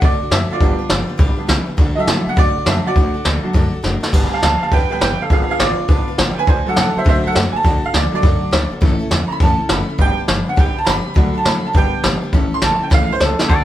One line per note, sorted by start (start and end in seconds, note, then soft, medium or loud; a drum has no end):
0.01 0.19 B2 loud
0.01 0.21 D3 loud
0.01 0.21 A3 medium
0.01 0.21 D4 medium
0.01 0.20 F#4 medium
0.01 0.18 A4 medium
0.01 0.32 D5 loud
0.01 kick loud
0.01 open hi-hat medium
0.20 0.30 D4 soft
0.20 0.31 F#4 soft
0.20 0.31 A4 medium
0.20 muted upright bass stroke medium
0.30 0.48 F#2 loud
0.30 0.50 A3 medium
0.30 0.50 D4 medium
0.30 0.50 F#4 medium
0.30 0.48 A4 medium
0.30 0.51 E5 medium
0.30 snare loud
0.30 open hi-hat medium
0.49 0.60 D4 soft
0.49 1.35 F4 medium
0.49 0.61 F#4 medium
0.49 0.60 A4 medium
0.49 1.37 D5 medium
0.49 muted upright bass stroke medium
0.60 0.77 G1 loud
0.60 0.79 G3 medium
0.60 0.83 G3 medium
0.60 0.83 B3 medium
0.60 0.80 D4 medium
0.60 0.83 D4 medium
0.60 0.79 G4 medium
0.60 0.77 B4 medium
0.60 kick loud
0.60 open hi-hat soft
0.79 0.89 D4 medium
0.79 0.90 G4 medium
0.79 0.89 B4 medium
0.79 muted upright bass stroke medium
0.89 1.06 G1 medium
0.89 1.08 G3 medium
0.89 1.09 D4 medium
0.89 1.08 G4 medium
0.89 1.06 B4 medium
0.89 snare loud
0.89 open hi-hat soft
1.07 1.17 D4 medium
1.07 1.18 G4 medium
1.07 1.18 B4 medium
1.07 muted upright bass stroke medium
1.18 1.36 B1 loud
1.18 1.37 G3 loud
1.18 1.38 D4 loud
1.18 1.37 G4 loud
1.18 1.36 B4 loud
1.18 kick loud
1.18 open hi-hat medium
1.37 1.47 G3 soft
1.37 1.48 B3 soft
1.37 1.48 D4 medium
1.37 1.47 D4 soft
1.37 1.48 G4 soft
1.37 1.48 B4 medium
1.47 1.65 C2 loud
1.47 1.67 G3 medium
1.47 1.67 D4 medium
1.47 1.67 G4 medium
1.47 1.65 B4 medium
1.47 snare loud
1.47 open hi-hat soft
1.66 1.77 D4 medium
1.66 1.78 G4 medium
1.66 1.77 B4 medium
1.66 muted upright bass stroke medium
1.77 1.95 D2 loud
1.77 1.96 D3 medium
1.77 1.97 A3 medium
1.77 1.97 D4 loud
1.77 1.96 F#4 loud
1.77 1.94 A4 loud
1.77 kick loud
1.77 open hi-hat soft
1.96 2.35 F#3 medium
1.96 2.35 A3 medium
1.96 2.35 D4 medium
1.96 2.06 D4 medium
1.96 2.07 F#4 medium
1.96 2.07 A4 medium
2.00 2.27 E5 loud
2.06 2.24 A2 medium
2.06 2.26 A3 medium
2.06 2.26 D4 medium
2.06 2.27 F#4 medium
2.06 2.25 A4 medium
2.06 snare loud
2.06 open hi-hat soft
2.26 2.36 D4 soft
2.26 2.36 F#4 soft
2.26 2.36 A4 medium
2.26 2.38 F#5 loud
2.26 muted upright bass stroke medium
2.36 2.53 B2 medium
2.36 2.55 D3 medium
2.36 2.56 A3 medium
2.36 2.56 D4 medium
2.36 2.56 F#4 loud
2.36 2.54 A4 loud
2.36 2.66 D5 loud
2.36 kick loud
2.36 open hi-hat medium
2.55 2.66 D4 soft
2.55 2.67 F#4 medium
2.55 2.66 A4 medium
2.55 muted upright bass stroke medium
2.66 2.83 F#2 loud
2.66 2.83 F#3 soft
2.66 2.85 A3 medium
2.66 2.83 A3 medium
2.66 2.84 D4 medium
2.66 2.86 D4 medium
2.66 2.85 F#4 medium
2.66 2.83 A4 medium
2.66 2.86 E5 medium
2.66 snare loud
2.66 open hi-hat medium
2.85 2.96 D4 soft
2.85 2.96 F#4 medium
2.85 3.70 F#4 medium
2.85 2.95 A4 medium
2.85 3.72 D5 loud
2.85 muted upright bass stroke medium
2.95 3.12 D2 loud
2.95 3.14 D3 medium
2.95 3.15 A3 medium
2.95 3.15 D4 medium
2.95 3.15 F#4 loud
2.95 3.13 A4 medium
2.95 kick loud
2.95 open hi-hat soft
3.14 3.24 D4 soft
3.14 3.25 F#4 medium
3.14 3.25 A4 medium
3.14 muted upright bass stroke medium
3.24 3.42 D2 medium
3.24 3.43 A3 medium
3.24 3.44 D4 medium
3.24 3.44 F#4 medium
3.24 3.42 A4 medium
3.24 snare loud
3.24 open hi-hat soft
3.43 3.61 F#3 medium
3.43 3.61 A3 soft
3.43 3.61 D4 medium
3.43 3.54 D4 soft
3.43 3.54 F#4 medium
3.43 3.54 A4 medium
3.43 muted upright bass stroke medium
3.53 3.71 F#2 medium
3.53 3.73 D3 loud
3.53 3.73 A3 medium
3.53 3.73 D4 loud
3.53 3.73 F#4 loud
3.53 3.71 A4 loud
3.53 kick loud
3.53 open hi-hat medium
3.72 3.83 D4 soft
3.72 3.84 F#4 medium
3.72 3.83 A4 medium
3.72 muted upright bass stroke medium
3.83 4.00 F#1 loud
3.83 4.02 A3 medium
3.83 4.03 D4 medium
3.83 4.01 F#4 medium
3.83 3.99 A4 medium
3.83 snare medium
4.01 4.12 D4 soft
4.01 4.13 F#4 soft
4.01 4.12 A4 medium
4.01 snare medium
4.12 4.30 G1 loud
4.12 4.31 G3 medium
4.12 4.35 G3 medium
4.12 4.35 B3 medium
4.12 4.32 D4 medium
4.12 4.35 D4 medium
4.12 4.31 G4 medium
4.12 4.30 B4 loud
4.12 kick loud
4.12 open hi-hat soft
4.12 crash medium
4.31 4.42 D4 soft
4.31 4.43 G4 medium
4.31 4.42 B4 medium
4.31 4.42 F5 medium
4.31 4.43 A5 medium
4.31 muted upright bass stroke medium
4.42 4.59 D2 medium
4.42 4.61 G3 medium
4.42 4.62 D4 medium
4.42 4.60 B4 medium
4.42 4.61 F5 medium
4.42 4.62 A5 loud
4.42 snare loud
4.61 4.71 D4 soft
4.61 4.72 G4 soft
4.61 4.71 B4 medium
4.61 4.71 F5 medium
4.61 4.72 A5 medium
4.61 muted upright bass stroke medium
4.71 4.88 E2 medium
4.71 4.90 G3 medium
4.71 4.91 D4 medium
4.71 4.91 G4 medium
4.71 4.90 B4 loud
4.71 4.89 B4 medium
4.71 4.91 G5 loud
4.71 kick loud
4.71 open hi-hat medium
4.90 4.99 G3 medium
4.90 5.00 B3 soft
4.90 5.00 D4 medium
4.90 5.01 G4 soft
4.90 5.01 B4 medium
4.90 5.01 G5 medium
4.90 muted upright bass stroke medium
4.94 5.00 D4 soft
5.00 5.17 G1 medium
5.00 5.19 G3 medium
5.00 5.20 D4 medium
5.00 5.20 G4 medium
5.00 5.19 B4 medium
5.00 5.18 B4 medium
5.00 5.20 G5 loud
5.00 snare loud
5.20 5.30 D4 soft
5.20 5.31 G4 medium
5.20 5.30 A4 medium
5.20 5.30 B4 medium
5.20 5.31 F5 medium
5.20 muted upright bass stroke medium
5.30 5.47 G#1 loud
5.30 5.76 F3 medium
5.30 5.49 G#3 medium
5.30 5.76 B3 soft
5.30 5.49 D4 medium
5.30 5.77 D4 medium
5.30 5.49 F4 medium
5.30 5.49 G#4 medium
5.30 5.48 B4 medium
5.30 5.50 F5 medium
5.30 kick loud
5.30 open hi-hat medium
5.49 5.59 D4 medium
5.49 5.60 F4 medium
5.49 5.59 G#4 loud
5.49 5.59 B4 medium
5.49 5.60 F5 loud
5.49 muted upright bass stroke medium
5.59 5.76 G#1 medium
5.59 5.78 G#3 medium
5.59 5.79 D4 medium
5.59 5.79 F4 medium
5.59 6.15 F4 loud
5.59 5.77 B4 medium
5.59 6.18 D5 loud
5.59 snare loud
5.59 open hi-hat medium
5.79 5.88 D4 soft
5.79 5.89 F4 soft
5.79 5.89 B4 medium
5.79 muted upright bass stroke medium
5.88 6.05 B1 medium
5.88 6.06 F3 medium
5.88 6.07 G#3 medium
5.88 6.06 B3 medium
5.88 6.08 D4 medium
5.88 6.06 D4 medium
5.88 6.08 F4 loud
5.88 6.07 B4 medium
5.88 kick loud
5.88 open hi-hat medium
6.08 6.18 D4 soft
6.08 6.19 F4 medium
6.08 6.18 B4 medium
6.08 muted upright bass stroke medium
6.18 6.35 G#1 loud
6.18 6.37 G#3 medium
6.18 6.37 D4 medium
6.18 6.37 F4 medium
6.18 6.36 B4 medium
6.18 snare loud
6.18 open hi-hat medium
6.37 6.47 D4 soft
6.37 6.48 F4 medium
6.37 6.47 B4 medium
6.37 6.47 G#5 loud
6.37 muted upright bass stroke medium
6.47 6.64 D2 loud
6.47 6.66 D3 medium
6.47 6.67 A3 medium
6.47 6.67 D4 medium
6.47 6.67 F#4 medium
6.47 6.65 A4 medium
6.47 6.66 C5 medium
6.47 6.67 G#5 medium
6.47 kick loud
6.47 open hi-hat soft
6.66 7.23 F#3 medium
6.66 7.24 A3 medium
6.66 7.24 D4 medium
6.66 6.77 D4 soft
6.66 6.77 F#4 medium
6.66 6.77 A4 medium
6.66 6.78 F#5 medium
6.66 muted upright bass stroke medium
6.76 6.94 A2 medium
6.76 6.95 A3 medium
6.76 6.96 D4 medium
6.76 6.96 A4 medium
6.76 6.97 F#5 medium
6.76 snare loud
6.76 open hi-hat soft
6.95 7.04 D4 soft
6.95 7.05 F#4 medium
6.95 7.06 A4 medium
6.95 7.06 C5 medium
6.95 7.07 E5 loud
6.95 muted upright bass stroke medium
7.04 7.23 B2 medium
7.04 7.24 D3 medium
7.04 7.24 A3 medium
7.04 7.25 D4 loud
7.04 7.24 F#4 medium
7.04 7.23 A4 medium
7.04 kick loud
7.04 open hi-hat medium
7.09 7.25 C5 medium
7.09 7.26 E5 loud
7.24 7.34 F#3 medium
7.24 7.34 A3 soft
7.24 7.35 D4 medium
7.24 7.34 D4 soft
7.24 7.34 F#4 soft
7.24 7.35 A4 medium
7.24 7.36 A4 loud
7.24 7.36 F#5 loud
7.24 muted upright bass stroke medium
7.33 7.52 F#2 medium
7.33 7.53 A3 medium
7.33 7.54 D4 medium
7.33 7.54 F#4 medium
7.33 7.52 A4 medium
7.33 snare loud
7.53 7.63 D4 soft
7.53 7.64 F#4 medium
7.53 7.64 A4 medium
7.53 7.84 A5 loud
7.53 muted upright bass stroke medium
7.63 7.81 D2 loud
7.63 7.83 D3 medium
7.63 7.83 A3 medium
7.63 7.83 D4 medium
7.63 7.83 F#4 medium
7.63 7.81 A4 medium
7.63 kick loud
7.63 open hi-hat medium
7.82 7.92 D4 medium
7.82 7.94 F#4 medium
7.82 7.93 A4 medium
7.82 7.95 F5 loud
7.82 muted upright bass stroke medium
7.93 8.10 D2 medium
7.93 8.12 A3 medium
7.93 8.13 D4 medium
7.93 8.12 F#4 medium
7.93 8.10 A4 medium
7.93 8.13 D5 medium
7.93 snare loud
7.93 open hi-hat medium
8.12 8.50 F#3 medium
8.12 8.50 A3 soft
8.12 8.51 D4 medium
8.12 8.22 D4 soft
8.12 8.23 F#4 medium
8.12 8.23 A4 medium
8.12 8.71 D5 loud
8.22 8.40 F#2 medium
8.22 8.42 D3 medium
8.22 8.42 A3 medium
8.22 8.42 D4 medium
8.22 8.42 F#4 medium
8.22 8.40 A4 medium
8.22 kick loud
8.22 open hi-hat medium
8.41 8.51 D4 soft
8.41 8.52 F#4 soft
8.41 8.52 A4 medium
8.41 muted upright bass stroke medium
8.51 8.69 D2 medium
8.51 8.71 A3 medium
8.51 8.71 D4 medium
8.51 8.70 F#4 medium
8.51 8.69 A4 medium
8.51 snare loud
8.51 open hi-hat medium
8.70 8.82 D4 medium
8.70 8.82 F#4 medium
8.70 8.81 A4 medium
8.70 muted upright bass stroke medium
8.81 8.98 A1 loud
8.81 9.00 A2 loud
8.81 9.00 E3 loud
8.81 9.03 E3 medium
8.81 9.01 A3 loud
8.81 9.04 A3 medium
8.81 9.00 C#4 medium
8.81 9.04 C#4 medium
8.81 8.99 E4 loud
8.81 8.98 A4 loud
8.81 kick loud
8.81 open hi-hat medium
8.99 9.08 A3 medium
8.99 9.10 C#4 medium
8.99 9.11 E4 medium
8.99 9.10 A4 medium
8.99 muted upright bass stroke medium
9.09 9.28 E2 medium
9.09 9.29 A3 medium
9.09 9.29 E4 medium
9.09 9.28 A4 medium
9.09 snare loud
9.09 open hi-hat soft
9.29 9.40 A3 soft
9.29 9.41 C#4 soft
9.29 9.40 E4 soft
9.29 9.40 A4 medium
9.29 9.41 B5 medium
9.29 muted upright bass stroke medium
9.40 9.57 F#2 loud
9.40 9.59 A2 medium
9.40 9.59 E3 medium
9.40 9.60 A3 medium
9.40 9.59 C#4 loud
9.40 9.58 E4 medium
9.40 9.57 A4 loud
9.40 9.70 A5 loud
9.40 kick loud
9.40 open hi-hat soft
9.58 9.68 A3 soft
9.58 9.69 C#4 soft
9.58 9.69 E4 medium
9.58 9.69 A4 medium
9.58 muted upright bass stroke medium
9.69 9.86 F#1 loud
9.69 9.88 A3 medium
9.69 9.88 C#4 medium
9.69 9.87 E4 medium
9.69 9.86 A4 medium
9.69 10.00 B5 medium
9.69 snare loud
9.69 open hi-hat soft
9.87 9.98 A3 soft
9.87 9.99 C#4 medium
9.87 9.99 E4 soft
9.87 9.98 A4 medium
9.87 muted upright bass stroke medium
9.98 10.15 G1 loud
9.98 10.17 G3 medium
9.98 11.12 G3 medium
9.98 11.12 B3 medium
9.98 10.18 D4 medium
9.98 11.12 D4 medium
9.98 10.18 G4 loud
9.98 10.16 B4 loud
9.98 10.18 G5 loud
9.98 kick loud
9.98 open hi-hat soft
10.17 10.28 D4 medium
10.17 10.29 G4 medium
10.17 10.28 B4 medium
10.17 muted upright bass stroke medium
10.28 10.45 G1 medium
10.28 10.47 G3 medium
10.28 10.47 D4 medium
10.28 10.47 G4 medium
10.28 10.45 B4 medium
10.28 snare loud
10.46 10.56 D4 soft
10.46 10.57 G4 soft
10.46 10.57 B4 medium
10.46 10.58 F#5 medium
10.46 muted upright bass stroke medium
10.56 10.74 B1 loud
10.56 10.76 G3 medium
10.56 10.76 D4 medium
10.56 10.76 G4 loud
10.56 10.74 B4 loud
10.56 10.77 G5 medium
10.56 kick loud
10.56 open hi-hat medium
10.75 10.85 D4 soft
10.75 10.87 G4 soft
10.75 10.86 B4 medium
10.75 10.87 A5 medium
10.75 muted upright bass stroke medium
10.85 11.03 G1 loud
10.85 11.05 G3 medium
10.85 11.06 D4 medium
10.85 11.05 G4 medium
10.85 11.03 B4 medium
10.85 10.87 A#5 medium
10.85 snare loud
10.85 open hi-hat medium
10.89 11.35 B5 loud
11.04 11.14 D4 soft
11.04 11.16 G4 medium
11.04 11.15 B4 medium
11.14 11.33 D2 loud
11.14 11.34 D3 medium
11.14 11.62 F#3 medium
11.14 11.34 A3 medium
11.14 11.62 A3 medium
11.14 11.35 D4 medium
11.14 11.62 D4 medium
11.14 11.34 F#4 medium
11.14 11.32 A4 medium
11.14 kick loud
11.14 open hi-hat soft
11.33 11.44 D4 soft
11.33 11.45 F#4 medium
11.33 11.44 A4 medium
11.33 muted upright bass stroke medium
11.38 11.46 A5 medium
11.44 11.62 A2 medium
11.44 11.63 A3 medium
11.44 11.64 D4 medium
11.44 snare loud
11.44 open hi-hat soft
11.48 11.65 B5 loud
11.63 11.73 D4 soft
11.63 11.75 F#4 medium
11.63 11.74 A4 medium
11.63 11.76 A5 medium
11.63 muted upright bass stroke medium
11.73 11.91 G1 medium
11.73 11.93 G3 medium
11.73 12.20 G3 medium
11.73 12.20 B3 medium
11.73 11.93 D4 medium
11.73 12.21 D4 medium
11.73 11.93 G4 medium
11.73 11.91 B4 medium
11.73 kick loud
11.73 open hi-hat medium
11.77 12.04 G5 loud
11.93 12.03 D4 soft
11.93 12.04 G4 medium
11.93 12.03 B4 medium
11.93 muted upright bass stroke medium
12.03 12.20 G#1 medium
12.03 12.22 G3 medium
12.03 12.23 D4 medium
12.03 12.22 G4 medium
12.03 12.20 B4 medium
12.03 snare loud
12.03 open hi-hat soft
12.22 12.34 D4 medium
12.22 12.33 G4 medium
12.22 12.32 B4 medium
12.22 muted upright bass stroke medium
12.32 12.49 A1 loud
12.32 12.52 A2 medium
12.32 12.54 E3 medium
12.32 12.52 E3 loud
12.32 12.55 A3 medium
12.32 12.52 A3 loud
12.32 12.55 C#4 medium
12.32 12.52 C#4 loud
12.32 12.51 E4 loud
12.32 12.50 A4 loud
12.32 kick loud
12.32 open hi-hat soft
12.51 12.60 A3 medium
12.51 12.62 C#4 medium
12.51 12.62 E4 medium
12.51 12.62 A4 medium
12.51 12.63 C6 loud
12.51 muted upright bass stroke medium
12.61 12.78 A1 medium
12.61 12.81 A3 medium
12.61 12.80 C#4 medium
12.61 12.79 E4 medium
12.61 12.78 A4 medium
12.61 12.82 A5 loud
12.61 snare loud
12.61 open hi-hat soft
12.79 12.90 A3 soft
12.79 12.90 C#4 soft
12.79 12.91 E4 medium
12.79 12.91 A4 soft
12.79 12.92 G5 medium
12.79 muted upright bass stroke medium
12.90 13.08 C#2 loud
12.90 13.10 A2 loud
12.90 13.10 E3 medium
12.90 13.10 A3 loud
12.90 13.10 C#4 medium
12.90 13.09 E4 loud
12.90 13.08 A4 loud
12.90 kick loud
12.90 snare medium
12.94 13.11 F5 loud
13.09 13.19 A3 soft
13.09 13.20 C#4 medium
13.09 13.21 E4 medium
13.09 13.20 A4 medium
13.09 13.21 C5 loud
13.09 muted upright bass stroke medium
13.20 13.37 C#2 loud
13.20 13.39 A3 medium
13.20 13.40 C#4 medium
13.20 13.39 E4 medium
13.20 13.40 A4 loud
13.20 13.37 A4 medium
13.20 snare loud
13.39 13.49 A3 soft
13.39 13.50 C#4 medium
13.39 13.50 C#4 soft
13.39 13.50 E4 medium
13.39 13.49 A4 medium
13.39 13.51 A4 loud
13.39 muted upright bass stroke medium
13.39 snare medium
13.49 13.64 D2 loud
13.49 13.64 D3 medium
13.49 13.64 A3 medium
13.49 13.64 D4 medium
13.49 13.64 F#4 medium
13.49 13.64 A4 medium
13.49 13.64 D5 medium
13.49 13.61 D5 medium
13.49 13.61 F#5 medium
13.49 13.61 A5 loud
13.49 kick loud
13.49 open hi-hat medium